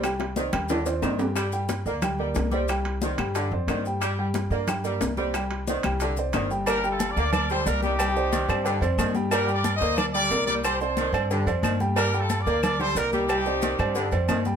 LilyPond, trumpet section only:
\new Staff \with { instrumentName = "Trumpet section" } { \time 4/4 \key g \minor \tempo 4 = 181 r1 | r1 | r1 | r1 |
r1 | \tuplet 3/2 { <g' bes'>4 <f' a'>8~ <f' a'>8 <bes' d''>4 } <bes' d''>8 <a' c''>8 <g' bes'>8 <ees' g'>8~ | <ees' g'>2~ <ees' g'>8 r4. | \tuplet 3/2 { <g' bes'>4 <bes' d''>8~ <bes' d''>8 <c'' ees''>4 } <bes' d''>8 <bes' d''>4 <bes' d''>8 |
<g' c''>8 <a' c''>4. r2 | \tuplet 3/2 { <g' bes'>4 <f' a'>8~ <f' a'>8 <bes' d''>4 } <bes' d''>8 <a' c''>8 <g' bes'>8 <ees' g'>8~ | <ees' g'>2~ <ees' g'>8 r4. | }